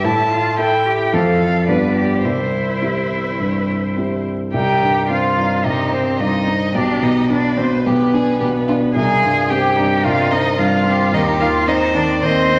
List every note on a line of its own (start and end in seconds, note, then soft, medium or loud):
0.04 0.57 A2 medium
0.04 0.31 E4 medium
0.04 0.59 A5 medium
0.31 0.57 F4 medium
0.58 0.87 E4 medium
0.58 1.09 E4 soft
0.58 1.09 A4 soft
0.58 1.06 G5 medium
0.86 1.15 G4 medium
1.07 1.14 G5 medium
1.12 1.67 F2 medium
1.12 1.64 C4 soft
1.12 1.64 F4 soft
1.12 1.65 A4 soft
1.12 1.67 A4 medium
1.12 1.66 F5 medium
1.67 2.22 G2 soft
1.67 2.20 B3 soft
1.67 2.20 F4 soft
1.67 2.20 G4 soft
1.67 1.95 B4 soft
1.67 2.22 D5 medium
1.96 2.26 G4 soft
2.24 2.80 C2 soft
2.24 4.26 E4 soft
2.24 4.21 C5 soft
2.82 3.35 C4 soft
2.82 3.35 E4 soft
2.82 3.36 G4 soft
3.40 4.31 G2 soft
3.97 4.50 C4 soft
3.97 4.50 E4 soft
3.97 4.50 G4 soft
4.53 5.62 C2 soft
4.53 5.06 D#4 soft
4.53 5.06 G4 medium
4.53 5.06 G5 medium
4.82 5.27 G2 soft
5.09 5.54 C4 soft
5.09 5.66 F4 soft
5.09 5.40 F4 soft
5.09 5.66 F5 medium
5.37 5.82 G2 soft
5.37 5.65 D#4 soft
5.64 6.72 C2 soft
5.64 5.94 D#4 medium
5.64 6.22 G4 soft
5.64 5.92 D#5 medium
5.92 6.37 C4 soft
5.92 6.21 C4 soft
5.92 6.19 C5 medium
6.20 6.64 G2 soft
6.20 6.74 D#4 medium
6.20 6.49 F4 soft
6.20 6.75 D#5 medium
6.47 6.75 C4 soft
6.47 6.74 D#4 soft
6.74 7.82 B1 soft
6.74 7.04 D4 medium
6.74 7.29 G4 medium
6.74 7.04 D5 medium
7.02 7.47 B2 soft
7.02 7.29 D#4 medium
7.02 7.29 D#5 medium
7.30 7.74 D4 soft
7.30 7.56 D4 medium
7.30 7.87 B4 medium
7.30 7.59 D5 medium
7.57 8.02 B2 soft
7.57 7.65 C4 medium
7.57 7.84 C5 medium
7.84 8.92 B1 soft
7.84 8.93 B3 medium
7.84 8.16 G4 soft
7.84 8.92 B4 medium
8.14 8.57 D4 soft
8.14 8.39 G#4 medium
8.40 8.85 B2 soft
8.40 8.48 G4 soft
8.68 8.96 D4 soft
8.68 8.76 F4 medium
8.95 10.01 C2 soft
8.95 9.21 D#4 medium
8.95 9.51 G#4 medium
8.95 9.51 G#5 medium
9.22 9.67 G2 soft
9.22 9.51 F4 medium
9.49 9.94 C4 soft
9.49 9.78 G4 medium
9.49 10.05 G4 medium
9.49 10.06 G5 medium
9.76 10.21 G2 soft
9.76 10.58 D#4 medium
10.04 11.10 C2 soft
10.04 10.32 F4 medium
10.04 10.33 F5 medium
10.31 10.75 C4 soft
10.31 10.58 D#4 medium
10.31 10.60 D#5 medium
10.58 11.02 G2 soft
10.58 11.15 F4 medium
10.58 10.85 F4 medium
10.58 11.13 F5 medium
10.85 11.13 C4 soft
10.85 11.12 G4 medium
11.13 12.19 D#2 medium
11.13 11.40 D#4 medium
11.13 11.66 G4 medium
11.13 11.21 D#5 medium
11.40 11.84 D#3 soft
11.40 11.69 F4 medium
11.40 11.48 F5 medium
11.67 12.11 C4 soft
11.67 11.94 D#4 medium
11.67 12.21 C5 medium
11.67 11.76 D#5 medium
11.95 12.39 D#3 soft
11.95 12.03 D4 medium
11.95 12.24 D5 medium
12.22 12.59 D#2 medium
12.22 12.59 C4 medium
12.22 12.59 C5 loud
12.22 12.59 D#5 medium
12.49 12.59 C4 soft